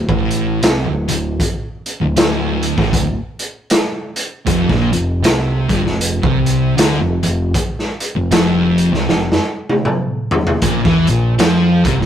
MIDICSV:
0, 0, Header, 1, 4, 480
1, 0, Start_track
1, 0, Tempo, 768246
1, 874, Time_signature, 4, 2, 24, 8
1, 7533, End_track
2, 0, Start_track
2, 0, Title_t, "Distorted electric guitar"
2, 0, Program_c, 0, 30
2, 60, Note_on_c, 0, 45, 93
2, 385, Note_off_c, 0, 45, 0
2, 388, Note_on_c, 0, 48, 102
2, 525, Note_off_c, 0, 48, 0
2, 532, Note_on_c, 0, 38, 66
2, 666, Note_off_c, 0, 38, 0
2, 674, Note_on_c, 0, 38, 67
2, 832, Note_off_c, 0, 38, 0
2, 1255, Note_on_c, 0, 38, 75
2, 1345, Note_off_c, 0, 38, 0
2, 1352, Note_on_c, 0, 38, 102
2, 1729, Note_off_c, 0, 38, 0
2, 1732, Note_on_c, 0, 45, 109
2, 1825, Note_off_c, 0, 45, 0
2, 1835, Note_on_c, 0, 38, 72
2, 1977, Note_off_c, 0, 38, 0
2, 2793, Note_on_c, 0, 41, 107
2, 2927, Note_off_c, 0, 41, 0
2, 2939, Note_on_c, 0, 46, 110
2, 3072, Note_off_c, 0, 46, 0
2, 3076, Note_on_c, 0, 41, 76
2, 3233, Note_off_c, 0, 41, 0
2, 3278, Note_on_c, 0, 48, 107
2, 3553, Note_off_c, 0, 48, 0
2, 3560, Note_on_c, 0, 43, 93
2, 3651, Note_off_c, 0, 43, 0
2, 3657, Note_on_c, 0, 41, 77
2, 3840, Note_off_c, 0, 41, 0
2, 3892, Note_on_c, 0, 48, 115
2, 4226, Note_off_c, 0, 48, 0
2, 4231, Note_on_c, 0, 50, 88
2, 4367, Note_off_c, 0, 50, 0
2, 4379, Note_on_c, 0, 41, 73
2, 4511, Note_off_c, 0, 41, 0
2, 4519, Note_on_c, 0, 41, 73
2, 4675, Note_off_c, 0, 41, 0
2, 5097, Note_on_c, 0, 41, 66
2, 5191, Note_off_c, 0, 41, 0
2, 5199, Note_on_c, 0, 41, 105
2, 5574, Note_off_c, 0, 41, 0
2, 5584, Note_on_c, 0, 48, 105
2, 5673, Note_off_c, 0, 48, 0
2, 5685, Note_on_c, 0, 41, 71
2, 5824, Note_off_c, 0, 41, 0
2, 6643, Note_on_c, 0, 46, 92
2, 6775, Note_off_c, 0, 46, 0
2, 6785, Note_on_c, 0, 52, 98
2, 6917, Note_off_c, 0, 52, 0
2, 6927, Note_on_c, 0, 46, 72
2, 7081, Note_off_c, 0, 46, 0
2, 7120, Note_on_c, 0, 53, 100
2, 7397, Note_off_c, 0, 53, 0
2, 7404, Note_on_c, 0, 48, 91
2, 7496, Note_off_c, 0, 48, 0
2, 7510, Note_on_c, 0, 46, 74
2, 7533, Note_off_c, 0, 46, 0
2, 7533, End_track
3, 0, Start_track
3, 0, Title_t, "Picked electric bass"
3, 0, Program_c, 1, 34
3, 54, Note_on_c, 1, 33, 81
3, 369, Note_off_c, 1, 33, 0
3, 399, Note_on_c, 1, 36, 105
3, 529, Note_off_c, 1, 36, 0
3, 538, Note_on_c, 1, 26, 72
3, 670, Note_off_c, 1, 26, 0
3, 686, Note_on_c, 1, 26, 88
3, 864, Note_off_c, 1, 26, 0
3, 1261, Note_on_c, 1, 26, 83
3, 1349, Note_off_c, 1, 26, 0
3, 1353, Note_on_c, 1, 26, 92
3, 1711, Note_off_c, 1, 26, 0
3, 1735, Note_on_c, 1, 33, 93
3, 1826, Note_off_c, 1, 33, 0
3, 1831, Note_on_c, 1, 26, 87
3, 1965, Note_off_c, 1, 26, 0
3, 2791, Note_on_c, 1, 29, 92
3, 2925, Note_off_c, 1, 29, 0
3, 2932, Note_on_c, 1, 34, 103
3, 3067, Note_off_c, 1, 34, 0
3, 3074, Note_on_c, 1, 29, 80
3, 3257, Note_off_c, 1, 29, 0
3, 3263, Note_on_c, 1, 36, 88
3, 3533, Note_off_c, 1, 36, 0
3, 3559, Note_on_c, 1, 31, 95
3, 3642, Note_off_c, 1, 31, 0
3, 3645, Note_on_c, 1, 29, 74
3, 3874, Note_off_c, 1, 29, 0
3, 3893, Note_on_c, 1, 36, 86
3, 4209, Note_off_c, 1, 36, 0
3, 4230, Note_on_c, 1, 38, 94
3, 4365, Note_off_c, 1, 38, 0
3, 4374, Note_on_c, 1, 29, 80
3, 4508, Note_off_c, 1, 29, 0
3, 4516, Note_on_c, 1, 29, 89
3, 4699, Note_off_c, 1, 29, 0
3, 5092, Note_on_c, 1, 29, 79
3, 5185, Note_off_c, 1, 29, 0
3, 5190, Note_on_c, 1, 29, 89
3, 5551, Note_off_c, 1, 29, 0
3, 5572, Note_on_c, 1, 36, 86
3, 5666, Note_off_c, 1, 36, 0
3, 5676, Note_on_c, 1, 29, 79
3, 5809, Note_off_c, 1, 29, 0
3, 6635, Note_on_c, 1, 34, 98
3, 6769, Note_off_c, 1, 34, 0
3, 6781, Note_on_c, 1, 40, 96
3, 6914, Note_off_c, 1, 40, 0
3, 6924, Note_on_c, 1, 34, 80
3, 7105, Note_off_c, 1, 34, 0
3, 7120, Note_on_c, 1, 41, 78
3, 7386, Note_off_c, 1, 41, 0
3, 7403, Note_on_c, 1, 36, 94
3, 7494, Note_off_c, 1, 36, 0
3, 7505, Note_on_c, 1, 34, 70
3, 7533, Note_off_c, 1, 34, 0
3, 7533, End_track
4, 0, Start_track
4, 0, Title_t, "Drums"
4, 54, Note_on_c, 9, 36, 104
4, 117, Note_off_c, 9, 36, 0
4, 192, Note_on_c, 9, 42, 64
4, 255, Note_off_c, 9, 42, 0
4, 391, Note_on_c, 9, 42, 100
4, 398, Note_on_c, 9, 38, 118
4, 454, Note_off_c, 9, 42, 0
4, 461, Note_off_c, 9, 38, 0
4, 678, Note_on_c, 9, 42, 80
4, 741, Note_off_c, 9, 42, 0
4, 873, Note_on_c, 9, 36, 106
4, 877, Note_on_c, 9, 42, 96
4, 936, Note_off_c, 9, 36, 0
4, 940, Note_off_c, 9, 42, 0
4, 1162, Note_on_c, 9, 42, 61
4, 1224, Note_off_c, 9, 42, 0
4, 1353, Note_on_c, 9, 42, 97
4, 1360, Note_on_c, 9, 38, 126
4, 1416, Note_off_c, 9, 42, 0
4, 1423, Note_off_c, 9, 38, 0
4, 1641, Note_on_c, 9, 42, 63
4, 1703, Note_off_c, 9, 42, 0
4, 1735, Note_on_c, 9, 36, 108
4, 1746, Note_on_c, 9, 38, 31
4, 1798, Note_off_c, 9, 36, 0
4, 1808, Note_off_c, 9, 38, 0
4, 1831, Note_on_c, 9, 36, 103
4, 1834, Note_on_c, 9, 42, 90
4, 1894, Note_off_c, 9, 36, 0
4, 1897, Note_off_c, 9, 42, 0
4, 2120, Note_on_c, 9, 42, 65
4, 2182, Note_off_c, 9, 42, 0
4, 2312, Note_on_c, 9, 42, 104
4, 2319, Note_on_c, 9, 38, 113
4, 2375, Note_off_c, 9, 42, 0
4, 2382, Note_off_c, 9, 38, 0
4, 2599, Note_on_c, 9, 42, 75
4, 2662, Note_off_c, 9, 42, 0
4, 2791, Note_on_c, 9, 36, 110
4, 2791, Note_on_c, 9, 42, 92
4, 2853, Note_off_c, 9, 42, 0
4, 2854, Note_off_c, 9, 36, 0
4, 2934, Note_on_c, 9, 36, 97
4, 2942, Note_on_c, 9, 38, 31
4, 2996, Note_off_c, 9, 36, 0
4, 3005, Note_off_c, 9, 38, 0
4, 3080, Note_on_c, 9, 42, 67
4, 3142, Note_off_c, 9, 42, 0
4, 3274, Note_on_c, 9, 42, 112
4, 3281, Note_on_c, 9, 38, 117
4, 3336, Note_off_c, 9, 42, 0
4, 3343, Note_off_c, 9, 38, 0
4, 3558, Note_on_c, 9, 36, 97
4, 3561, Note_on_c, 9, 42, 63
4, 3620, Note_off_c, 9, 36, 0
4, 3623, Note_off_c, 9, 42, 0
4, 3663, Note_on_c, 9, 38, 33
4, 3725, Note_off_c, 9, 38, 0
4, 3754, Note_on_c, 9, 42, 105
4, 3817, Note_off_c, 9, 42, 0
4, 3895, Note_on_c, 9, 36, 114
4, 3958, Note_off_c, 9, 36, 0
4, 4038, Note_on_c, 9, 42, 66
4, 4101, Note_off_c, 9, 42, 0
4, 4236, Note_on_c, 9, 42, 108
4, 4243, Note_on_c, 9, 38, 118
4, 4299, Note_off_c, 9, 42, 0
4, 4306, Note_off_c, 9, 38, 0
4, 4518, Note_on_c, 9, 42, 76
4, 4580, Note_off_c, 9, 42, 0
4, 4713, Note_on_c, 9, 36, 105
4, 4714, Note_on_c, 9, 42, 89
4, 4776, Note_off_c, 9, 36, 0
4, 4777, Note_off_c, 9, 42, 0
4, 4868, Note_on_c, 9, 38, 33
4, 4930, Note_off_c, 9, 38, 0
4, 5001, Note_on_c, 9, 42, 70
4, 5063, Note_off_c, 9, 42, 0
4, 5195, Note_on_c, 9, 42, 102
4, 5202, Note_on_c, 9, 38, 117
4, 5257, Note_off_c, 9, 42, 0
4, 5264, Note_off_c, 9, 38, 0
4, 5485, Note_on_c, 9, 42, 56
4, 5547, Note_off_c, 9, 42, 0
4, 5586, Note_on_c, 9, 38, 34
4, 5649, Note_off_c, 9, 38, 0
4, 5679, Note_on_c, 9, 38, 66
4, 5742, Note_off_c, 9, 38, 0
4, 5822, Note_on_c, 9, 38, 66
4, 5884, Note_off_c, 9, 38, 0
4, 6057, Note_on_c, 9, 48, 71
4, 6120, Note_off_c, 9, 48, 0
4, 6155, Note_on_c, 9, 47, 81
4, 6218, Note_off_c, 9, 47, 0
4, 6443, Note_on_c, 9, 43, 102
4, 6505, Note_off_c, 9, 43, 0
4, 6540, Note_on_c, 9, 43, 94
4, 6602, Note_off_c, 9, 43, 0
4, 6634, Note_on_c, 9, 42, 95
4, 6637, Note_on_c, 9, 36, 108
4, 6697, Note_off_c, 9, 42, 0
4, 6699, Note_off_c, 9, 36, 0
4, 6779, Note_on_c, 9, 36, 111
4, 6787, Note_on_c, 9, 38, 30
4, 6842, Note_off_c, 9, 36, 0
4, 6850, Note_off_c, 9, 38, 0
4, 6918, Note_on_c, 9, 42, 63
4, 6981, Note_off_c, 9, 42, 0
4, 7116, Note_on_c, 9, 42, 90
4, 7123, Note_on_c, 9, 38, 119
4, 7178, Note_off_c, 9, 42, 0
4, 7185, Note_off_c, 9, 38, 0
4, 7403, Note_on_c, 9, 42, 73
4, 7404, Note_on_c, 9, 36, 95
4, 7466, Note_off_c, 9, 36, 0
4, 7466, Note_off_c, 9, 42, 0
4, 7507, Note_on_c, 9, 38, 32
4, 7533, Note_off_c, 9, 38, 0
4, 7533, End_track
0, 0, End_of_file